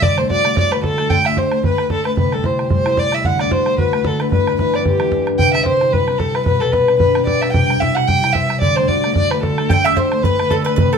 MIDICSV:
0, 0, Header, 1, 5, 480
1, 0, Start_track
1, 0, Tempo, 268817
1, 50, Time_signature, 4, 2, 24, 8
1, 19602, End_track
2, 0, Start_track
2, 0, Title_t, "Violin"
2, 0, Program_c, 0, 40
2, 44, Note_on_c, 0, 74, 90
2, 317, Note_on_c, 0, 72, 69
2, 344, Note_off_c, 0, 74, 0
2, 528, Note_off_c, 0, 72, 0
2, 539, Note_on_c, 0, 74, 92
2, 978, Note_off_c, 0, 74, 0
2, 1037, Note_on_c, 0, 74, 94
2, 1286, Note_on_c, 0, 71, 74
2, 1313, Note_off_c, 0, 74, 0
2, 1491, Note_off_c, 0, 71, 0
2, 1498, Note_on_c, 0, 69, 91
2, 1971, Note_on_c, 0, 79, 90
2, 1998, Note_off_c, 0, 69, 0
2, 2248, Note_on_c, 0, 76, 82
2, 2275, Note_off_c, 0, 79, 0
2, 2470, Note_on_c, 0, 72, 80
2, 2496, Note_off_c, 0, 76, 0
2, 2933, Note_off_c, 0, 72, 0
2, 2954, Note_on_c, 0, 71, 81
2, 3382, Note_off_c, 0, 71, 0
2, 3429, Note_on_c, 0, 69, 93
2, 3662, Note_off_c, 0, 69, 0
2, 3676, Note_on_c, 0, 71, 74
2, 3867, Note_off_c, 0, 71, 0
2, 3896, Note_on_c, 0, 71, 76
2, 4161, Note_on_c, 0, 69, 74
2, 4187, Note_off_c, 0, 71, 0
2, 4383, Note_on_c, 0, 72, 68
2, 4410, Note_off_c, 0, 69, 0
2, 4844, Note_off_c, 0, 72, 0
2, 4855, Note_on_c, 0, 72, 87
2, 5334, Note_on_c, 0, 74, 95
2, 5361, Note_off_c, 0, 72, 0
2, 5616, Note_on_c, 0, 76, 84
2, 5642, Note_off_c, 0, 74, 0
2, 5813, Note_on_c, 0, 78, 83
2, 5840, Note_off_c, 0, 76, 0
2, 6083, Note_on_c, 0, 74, 71
2, 6110, Note_off_c, 0, 78, 0
2, 6280, Note_on_c, 0, 72, 87
2, 6307, Note_off_c, 0, 74, 0
2, 6755, Note_off_c, 0, 72, 0
2, 6765, Note_on_c, 0, 71, 80
2, 7268, Note_on_c, 0, 69, 77
2, 7295, Note_off_c, 0, 71, 0
2, 7519, Note_on_c, 0, 71, 72
2, 7546, Note_off_c, 0, 69, 0
2, 7708, Note_off_c, 0, 71, 0
2, 7718, Note_on_c, 0, 71, 83
2, 8160, Note_off_c, 0, 71, 0
2, 8227, Note_on_c, 0, 71, 80
2, 8484, Note_on_c, 0, 74, 72
2, 8511, Note_off_c, 0, 71, 0
2, 8683, Note_off_c, 0, 74, 0
2, 8708, Note_on_c, 0, 67, 75
2, 9384, Note_off_c, 0, 67, 0
2, 9619, Note_on_c, 0, 79, 96
2, 9872, Note_off_c, 0, 79, 0
2, 9889, Note_on_c, 0, 76, 87
2, 10090, Note_off_c, 0, 76, 0
2, 10109, Note_on_c, 0, 72, 89
2, 10584, Note_on_c, 0, 71, 84
2, 10611, Note_off_c, 0, 72, 0
2, 11044, Note_on_c, 0, 69, 89
2, 11070, Note_off_c, 0, 71, 0
2, 11339, Note_on_c, 0, 71, 87
2, 11366, Note_off_c, 0, 69, 0
2, 11525, Note_off_c, 0, 71, 0
2, 11536, Note_on_c, 0, 71, 92
2, 11797, Note_on_c, 0, 69, 81
2, 11824, Note_off_c, 0, 71, 0
2, 11998, Note_on_c, 0, 71, 82
2, 12024, Note_off_c, 0, 69, 0
2, 12474, Note_off_c, 0, 71, 0
2, 12485, Note_on_c, 0, 71, 88
2, 12944, Note_off_c, 0, 71, 0
2, 12969, Note_on_c, 0, 74, 84
2, 13233, Note_on_c, 0, 76, 85
2, 13260, Note_off_c, 0, 74, 0
2, 13431, Note_off_c, 0, 76, 0
2, 13442, Note_on_c, 0, 79, 88
2, 13938, Note_on_c, 0, 76, 92
2, 13965, Note_off_c, 0, 79, 0
2, 14198, Note_on_c, 0, 78, 87
2, 14225, Note_off_c, 0, 76, 0
2, 14415, Note_on_c, 0, 79, 97
2, 14442, Note_off_c, 0, 78, 0
2, 14874, Note_on_c, 0, 76, 92
2, 14901, Note_off_c, 0, 79, 0
2, 15366, Note_off_c, 0, 76, 0
2, 15377, Note_on_c, 0, 74, 94
2, 15638, Note_on_c, 0, 72, 81
2, 15665, Note_off_c, 0, 74, 0
2, 15855, Note_on_c, 0, 74, 82
2, 15882, Note_off_c, 0, 72, 0
2, 16334, Note_off_c, 0, 74, 0
2, 16345, Note_on_c, 0, 74, 92
2, 16622, Note_on_c, 0, 71, 83
2, 16648, Note_off_c, 0, 74, 0
2, 16818, Note_off_c, 0, 71, 0
2, 16829, Note_on_c, 0, 69, 86
2, 17312, Note_on_c, 0, 79, 104
2, 17339, Note_off_c, 0, 69, 0
2, 17582, Note_on_c, 0, 76, 85
2, 17609, Note_off_c, 0, 79, 0
2, 17793, Note_on_c, 0, 72, 79
2, 17820, Note_off_c, 0, 76, 0
2, 18254, Note_on_c, 0, 71, 93
2, 18281, Note_off_c, 0, 72, 0
2, 18754, Note_on_c, 0, 69, 80
2, 18781, Note_off_c, 0, 71, 0
2, 18997, Note_off_c, 0, 69, 0
2, 19008, Note_on_c, 0, 71, 78
2, 19220, Note_off_c, 0, 71, 0
2, 19237, Note_on_c, 0, 71, 79
2, 19521, Note_on_c, 0, 69, 80
2, 19548, Note_off_c, 0, 71, 0
2, 19602, Note_off_c, 0, 69, 0
2, 19602, End_track
3, 0, Start_track
3, 0, Title_t, "Mandolin"
3, 0, Program_c, 1, 25
3, 17331, Note_on_c, 1, 79, 85
3, 17589, Note_off_c, 1, 79, 0
3, 17596, Note_on_c, 1, 76, 91
3, 17797, Note_on_c, 1, 72, 64
3, 17814, Note_off_c, 1, 76, 0
3, 18249, Note_off_c, 1, 72, 0
3, 18300, Note_on_c, 1, 71, 68
3, 18742, Note_off_c, 1, 71, 0
3, 18772, Note_on_c, 1, 69, 71
3, 19001, Note_off_c, 1, 69, 0
3, 19008, Note_on_c, 1, 71, 84
3, 19194, Note_off_c, 1, 71, 0
3, 19216, Note_on_c, 1, 71, 80
3, 19481, Note_off_c, 1, 71, 0
3, 19509, Note_on_c, 1, 69, 80
3, 19602, Note_off_c, 1, 69, 0
3, 19602, End_track
4, 0, Start_track
4, 0, Title_t, "Harp"
4, 0, Program_c, 2, 46
4, 0, Note_on_c, 2, 62, 48
4, 0, Note_on_c, 2, 64, 55
4, 0, Note_on_c, 2, 67, 45
4, 0, Note_on_c, 2, 72, 54
4, 42, Note_on_c, 2, 50, 56
4, 313, Note_on_c, 2, 57, 45
4, 533, Note_on_c, 2, 66, 57
4, 640, Note_off_c, 2, 67, 0
4, 775, Note_off_c, 2, 57, 0
4, 783, Note_on_c, 2, 57, 44
4, 1004, Note_off_c, 2, 66, 0
4, 1011, Note_on_c, 2, 66, 57
4, 1263, Note_off_c, 2, 57, 0
4, 1270, Note_on_c, 2, 57, 50
4, 1455, Note_off_c, 2, 50, 0
4, 1477, Note_on_c, 2, 50, 54
4, 1744, Note_off_c, 2, 57, 0
4, 1751, Note_on_c, 2, 57, 50
4, 1963, Note_off_c, 2, 50, 0
4, 1985, Note_on_c, 2, 50, 58
4, 2221, Note_off_c, 2, 57, 0
4, 2228, Note_on_c, 2, 57, 41
4, 2444, Note_on_c, 2, 67, 52
4, 2551, Note_off_c, 2, 66, 0
4, 2707, Note_off_c, 2, 57, 0
4, 2714, Note_on_c, 2, 57, 48
4, 2913, Note_off_c, 2, 67, 0
4, 2920, Note_on_c, 2, 67, 54
4, 2954, Note_off_c, 2, 62, 0
4, 3109, Note_off_c, 2, 72, 0
4, 3173, Note_off_c, 2, 57, 0
4, 3180, Note_on_c, 2, 57, 49
4, 3381, Note_off_c, 2, 50, 0
4, 3402, Note_on_c, 2, 50, 48
4, 3655, Note_off_c, 2, 57, 0
4, 3662, Note_on_c, 2, 57, 47
4, 3881, Note_on_c, 2, 48, 55
4, 3964, Note_off_c, 2, 50, 0
4, 4052, Note_off_c, 2, 64, 0
4, 4154, Note_on_c, 2, 55, 48
4, 4359, Note_on_c, 2, 64, 54
4, 4610, Note_off_c, 2, 67, 0
4, 4617, Note_on_c, 2, 67, 49
4, 4833, Note_off_c, 2, 55, 0
4, 4855, Note_on_c, 2, 55, 50
4, 5105, Note_off_c, 2, 64, 0
4, 5113, Note_on_c, 2, 64, 51
4, 5307, Note_off_c, 2, 67, 0
4, 5314, Note_on_c, 2, 67, 50
4, 5570, Note_off_c, 2, 64, 0
4, 5577, Note_on_c, 2, 64, 49
4, 5802, Note_on_c, 2, 50, 64
4, 5880, Note_off_c, 2, 48, 0
4, 5880, Note_off_c, 2, 55, 0
4, 6059, Note_off_c, 2, 57, 0
4, 6066, Note_on_c, 2, 57, 46
4, 6269, Note_on_c, 2, 66, 56
4, 6376, Note_off_c, 2, 67, 0
4, 6528, Note_off_c, 2, 57, 0
4, 6535, Note_on_c, 2, 57, 53
4, 6743, Note_off_c, 2, 66, 0
4, 6750, Note_on_c, 2, 66, 57
4, 7020, Note_off_c, 2, 57, 0
4, 7027, Note_on_c, 2, 57, 50
4, 7201, Note_off_c, 2, 50, 0
4, 7223, Note_on_c, 2, 50, 55
4, 7501, Note_off_c, 2, 57, 0
4, 7508, Note_on_c, 2, 57, 56
4, 7725, Note_on_c, 2, 43, 58
4, 7798, Note_off_c, 2, 50, 0
4, 7833, Note_off_c, 2, 66, 0
4, 7985, Note_on_c, 2, 50, 50
4, 8216, Note_on_c, 2, 52, 54
4, 8471, Note_on_c, 2, 59, 46
4, 8663, Note_off_c, 2, 50, 0
4, 8685, Note_on_c, 2, 50, 58
4, 8758, Note_off_c, 2, 52, 0
4, 8938, Note_on_c, 2, 52, 53
4, 9162, Note_on_c, 2, 62, 51
4, 9415, Note_off_c, 2, 59, 0
4, 9422, Note_on_c, 2, 59, 50
4, 9629, Note_on_c, 2, 48, 65
4, 9718, Note_off_c, 2, 43, 0
4, 9718, Note_off_c, 2, 50, 0
4, 9718, Note_off_c, 2, 52, 0
4, 9736, Note_off_c, 2, 59, 0
4, 9928, Note_on_c, 2, 55, 39
4, 10119, Note_on_c, 2, 60, 54
4, 10241, Note_off_c, 2, 64, 0
4, 10383, Note_on_c, 2, 64, 49
4, 10564, Note_off_c, 2, 55, 0
4, 10585, Note_on_c, 2, 55, 54
4, 10856, Note_off_c, 2, 60, 0
4, 10863, Note_on_c, 2, 60, 52
4, 11064, Note_on_c, 2, 67, 49
4, 11333, Note_off_c, 2, 64, 0
4, 11341, Note_on_c, 2, 64, 49
4, 11560, Note_on_c, 2, 47, 65
4, 11638, Note_off_c, 2, 48, 0
4, 11638, Note_off_c, 2, 55, 0
4, 11667, Note_off_c, 2, 60, 0
4, 11820, Note_on_c, 2, 55, 51
4, 12022, Note_on_c, 2, 59, 54
4, 12294, Note_off_c, 2, 62, 0
4, 12301, Note_on_c, 2, 62, 49
4, 12476, Note_off_c, 2, 55, 0
4, 12498, Note_on_c, 2, 55, 59
4, 12776, Note_off_c, 2, 59, 0
4, 12783, Note_on_c, 2, 59, 54
4, 13000, Note_off_c, 2, 67, 0
4, 13007, Note_on_c, 2, 67, 52
4, 13279, Note_off_c, 2, 62, 0
4, 13286, Note_on_c, 2, 62, 48
4, 13452, Note_off_c, 2, 57, 0
4, 13470, Note_on_c, 2, 48, 67
4, 13561, Note_off_c, 2, 47, 0
4, 13561, Note_off_c, 2, 55, 0
4, 13577, Note_off_c, 2, 59, 0
4, 13739, Note_on_c, 2, 55, 52
4, 13948, Note_off_c, 2, 64, 0
4, 13955, Note_on_c, 2, 64, 54
4, 14214, Note_off_c, 2, 67, 0
4, 14221, Note_on_c, 2, 67, 49
4, 14429, Note_off_c, 2, 55, 0
4, 14450, Note_on_c, 2, 55, 56
4, 14694, Note_off_c, 2, 64, 0
4, 14701, Note_on_c, 2, 64, 56
4, 14916, Note_on_c, 2, 72, 53
4, 15165, Note_off_c, 2, 67, 0
4, 15172, Note_on_c, 2, 67, 56
4, 15400, Note_on_c, 2, 50, 67
4, 15487, Note_off_c, 2, 48, 0
4, 15487, Note_off_c, 2, 55, 0
4, 15659, Note_on_c, 2, 57, 48
4, 15877, Note_on_c, 2, 66, 53
4, 15984, Note_off_c, 2, 67, 0
4, 16145, Note_off_c, 2, 57, 0
4, 16152, Note_on_c, 2, 57, 48
4, 16357, Note_off_c, 2, 66, 0
4, 16365, Note_on_c, 2, 66, 53
4, 16644, Note_off_c, 2, 57, 0
4, 16651, Note_on_c, 2, 57, 47
4, 16847, Note_off_c, 2, 50, 0
4, 16868, Note_on_c, 2, 50, 58
4, 17137, Note_off_c, 2, 57, 0
4, 17144, Note_on_c, 2, 57, 47
4, 17321, Note_off_c, 2, 50, 0
4, 17342, Note_on_c, 2, 50, 60
4, 17613, Note_off_c, 2, 57, 0
4, 17620, Note_on_c, 2, 57, 42
4, 17832, Note_on_c, 2, 67, 54
4, 17939, Note_off_c, 2, 66, 0
4, 18070, Note_off_c, 2, 57, 0
4, 18077, Note_on_c, 2, 57, 51
4, 18284, Note_off_c, 2, 62, 0
4, 18305, Note_off_c, 2, 67, 0
4, 18312, Note_on_c, 2, 67, 51
4, 18450, Note_off_c, 2, 72, 0
4, 18558, Note_off_c, 2, 57, 0
4, 18565, Note_on_c, 2, 57, 50
4, 18777, Note_off_c, 2, 50, 0
4, 18798, Note_on_c, 2, 50, 59
4, 19056, Note_off_c, 2, 57, 0
4, 19063, Note_on_c, 2, 57, 50
4, 19272, Note_on_c, 2, 48, 64
4, 19340, Note_off_c, 2, 50, 0
4, 19365, Note_off_c, 2, 64, 0
4, 19602, Note_off_c, 2, 48, 0
4, 19602, Note_off_c, 2, 57, 0
4, 19602, Note_off_c, 2, 67, 0
4, 19602, End_track
5, 0, Start_track
5, 0, Title_t, "Bodhran"
5, 41, Note_on_c, 9, 64, 82
5, 220, Note_off_c, 9, 64, 0
5, 316, Note_on_c, 9, 64, 54
5, 429, Note_off_c, 9, 64, 0
5, 429, Note_on_c, 9, 64, 22
5, 538, Note_off_c, 9, 64, 0
5, 538, Note_on_c, 9, 64, 72
5, 716, Note_off_c, 9, 64, 0
5, 799, Note_on_c, 9, 64, 59
5, 978, Note_off_c, 9, 64, 0
5, 1016, Note_on_c, 9, 64, 83
5, 1195, Note_off_c, 9, 64, 0
5, 1286, Note_on_c, 9, 64, 69
5, 1465, Note_off_c, 9, 64, 0
5, 1491, Note_on_c, 9, 64, 75
5, 1670, Note_off_c, 9, 64, 0
5, 1752, Note_on_c, 9, 64, 64
5, 1931, Note_off_c, 9, 64, 0
5, 1966, Note_on_c, 9, 64, 78
5, 2145, Note_off_c, 9, 64, 0
5, 2233, Note_on_c, 9, 64, 60
5, 2349, Note_off_c, 9, 64, 0
5, 2349, Note_on_c, 9, 64, 25
5, 2442, Note_off_c, 9, 64, 0
5, 2442, Note_on_c, 9, 64, 71
5, 2621, Note_off_c, 9, 64, 0
5, 2706, Note_on_c, 9, 64, 59
5, 2884, Note_off_c, 9, 64, 0
5, 2928, Note_on_c, 9, 64, 76
5, 3107, Note_off_c, 9, 64, 0
5, 3184, Note_on_c, 9, 64, 66
5, 3362, Note_off_c, 9, 64, 0
5, 3392, Note_on_c, 9, 64, 70
5, 3571, Note_off_c, 9, 64, 0
5, 3666, Note_on_c, 9, 64, 60
5, 3845, Note_off_c, 9, 64, 0
5, 3880, Note_on_c, 9, 64, 74
5, 4058, Note_off_c, 9, 64, 0
5, 4149, Note_on_c, 9, 64, 48
5, 4252, Note_off_c, 9, 64, 0
5, 4252, Note_on_c, 9, 64, 21
5, 4354, Note_off_c, 9, 64, 0
5, 4354, Note_on_c, 9, 64, 69
5, 4532, Note_off_c, 9, 64, 0
5, 4627, Note_on_c, 9, 64, 50
5, 4805, Note_off_c, 9, 64, 0
5, 4829, Note_on_c, 9, 64, 81
5, 5008, Note_off_c, 9, 64, 0
5, 5103, Note_on_c, 9, 64, 64
5, 5282, Note_off_c, 9, 64, 0
5, 5311, Note_on_c, 9, 64, 76
5, 5489, Note_off_c, 9, 64, 0
5, 5575, Note_on_c, 9, 64, 55
5, 5753, Note_off_c, 9, 64, 0
5, 5795, Note_on_c, 9, 64, 68
5, 5973, Note_off_c, 9, 64, 0
5, 6061, Note_on_c, 9, 64, 60
5, 6168, Note_off_c, 9, 64, 0
5, 6168, Note_on_c, 9, 64, 21
5, 6274, Note_off_c, 9, 64, 0
5, 6274, Note_on_c, 9, 64, 81
5, 6453, Note_off_c, 9, 64, 0
5, 6536, Note_on_c, 9, 64, 52
5, 6715, Note_off_c, 9, 64, 0
5, 6756, Note_on_c, 9, 64, 64
5, 6934, Note_off_c, 9, 64, 0
5, 7021, Note_on_c, 9, 64, 65
5, 7199, Note_off_c, 9, 64, 0
5, 7223, Note_on_c, 9, 64, 82
5, 7401, Note_off_c, 9, 64, 0
5, 7497, Note_on_c, 9, 64, 59
5, 7676, Note_off_c, 9, 64, 0
5, 7715, Note_on_c, 9, 64, 78
5, 7894, Note_off_c, 9, 64, 0
5, 7989, Note_on_c, 9, 64, 61
5, 8103, Note_off_c, 9, 64, 0
5, 8103, Note_on_c, 9, 64, 23
5, 8197, Note_off_c, 9, 64, 0
5, 8197, Note_on_c, 9, 64, 68
5, 8376, Note_off_c, 9, 64, 0
5, 8459, Note_on_c, 9, 64, 52
5, 8637, Note_off_c, 9, 64, 0
5, 8669, Note_on_c, 9, 64, 75
5, 8847, Note_off_c, 9, 64, 0
5, 8923, Note_on_c, 9, 64, 68
5, 9102, Note_off_c, 9, 64, 0
5, 9137, Note_on_c, 9, 64, 73
5, 9316, Note_off_c, 9, 64, 0
5, 9411, Note_on_c, 9, 64, 57
5, 9590, Note_off_c, 9, 64, 0
5, 9627, Note_on_c, 9, 64, 73
5, 9806, Note_off_c, 9, 64, 0
5, 9908, Note_on_c, 9, 64, 52
5, 10003, Note_off_c, 9, 64, 0
5, 10003, Note_on_c, 9, 64, 22
5, 10107, Note_off_c, 9, 64, 0
5, 10107, Note_on_c, 9, 64, 71
5, 10285, Note_off_c, 9, 64, 0
5, 10377, Note_on_c, 9, 64, 52
5, 10555, Note_off_c, 9, 64, 0
5, 10600, Note_on_c, 9, 64, 63
5, 10778, Note_off_c, 9, 64, 0
5, 10851, Note_on_c, 9, 64, 57
5, 11029, Note_off_c, 9, 64, 0
5, 11065, Note_on_c, 9, 64, 78
5, 11244, Note_off_c, 9, 64, 0
5, 11336, Note_on_c, 9, 64, 59
5, 11514, Note_off_c, 9, 64, 0
5, 11537, Note_on_c, 9, 64, 74
5, 11715, Note_off_c, 9, 64, 0
5, 11817, Note_on_c, 9, 64, 56
5, 11913, Note_off_c, 9, 64, 0
5, 11913, Note_on_c, 9, 64, 24
5, 12021, Note_off_c, 9, 64, 0
5, 12021, Note_on_c, 9, 64, 76
5, 12200, Note_off_c, 9, 64, 0
5, 12291, Note_on_c, 9, 64, 57
5, 12469, Note_off_c, 9, 64, 0
5, 12499, Note_on_c, 9, 64, 83
5, 12678, Note_off_c, 9, 64, 0
5, 12771, Note_on_c, 9, 64, 71
5, 12950, Note_off_c, 9, 64, 0
5, 12984, Note_on_c, 9, 64, 74
5, 13163, Note_off_c, 9, 64, 0
5, 13257, Note_on_c, 9, 64, 61
5, 13436, Note_off_c, 9, 64, 0
5, 13468, Note_on_c, 9, 64, 86
5, 13646, Note_off_c, 9, 64, 0
5, 13754, Note_on_c, 9, 64, 56
5, 13868, Note_off_c, 9, 64, 0
5, 13868, Note_on_c, 9, 64, 25
5, 13961, Note_off_c, 9, 64, 0
5, 13961, Note_on_c, 9, 64, 74
5, 14140, Note_off_c, 9, 64, 0
5, 14224, Note_on_c, 9, 64, 56
5, 14403, Note_off_c, 9, 64, 0
5, 14436, Note_on_c, 9, 64, 73
5, 14615, Note_off_c, 9, 64, 0
5, 14711, Note_on_c, 9, 64, 58
5, 14889, Note_off_c, 9, 64, 0
5, 14909, Note_on_c, 9, 64, 72
5, 15088, Note_off_c, 9, 64, 0
5, 15179, Note_on_c, 9, 64, 54
5, 15357, Note_off_c, 9, 64, 0
5, 15385, Note_on_c, 9, 64, 75
5, 15563, Note_off_c, 9, 64, 0
5, 15662, Note_on_c, 9, 64, 54
5, 15763, Note_off_c, 9, 64, 0
5, 15763, Note_on_c, 9, 64, 21
5, 15866, Note_off_c, 9, 64, 0
5, 15866, Note_on_c, 9, 64, 68
5, 16045, Note_off_c, 9, 64, 0
5, 16140, Note_on_c, 9, 64, 55
5, 16319, Note_off_c, 9, 64, 0
5, 16348, Note_on_c, 9, 64, 81
5, 16527, Note_off_c, 9, 64, 0
5, 16629, Note_on_c, 9, 64, 65
5, 16808, Note_off_c, 9, 64, 0
5, 16841, Note_on_c, 9, 64, 80
5, 17019, Note_off_c, 9, 64, 0
5, 17107, Note_on_c, 9, 64, 74
5, 17286, Note_off_c, 9, 64, 0
5, 17321, Note_on_c, 9, 64, 92
5, 17499, Note_off_c, 9, 64, 0
5, 17597, Note_on_c, 9, 64, 66
5, 17695, Note_off_c, 9, 64, 0
5, 17695, Note_on_c, 9, 64, 25
5, 17795, Note_off_c, 9, 64, 0
5, 17795, Note_on_c, 9, 64, 82
5, 17974, Note_off_c, 9, 64, 0
5, 18065, Note_on_c, 9, 64, 60
5, 18243, Note_off_c, 9, 64, 0
5, 18283, Note_on_c, 9, 64, 82
5, 18462, Note_off_c, 9, 64, 0
5, 18562, Note_on_c, 9, 64, 66
5, 18740, Note_off_c, 9, 64, 0
5, 18760, Note_on_c, 9, 64, 85
5, 18939, Note_off_c, 9, 64, 0
5, 19037, Note_on_c, 9, 64, 62
5, 19215, Note_off_c, 9, 64, 0
5, 19246, Note_on_c, 9, 64, 92
5, 19425, Note_off_c, 9, 64, 0
5, 19518, Note_on_c, 9, 64, 60
5, 19602, Note_off_c, 9, 64, 0
5, 19602, End_track
0, 0, End_of_file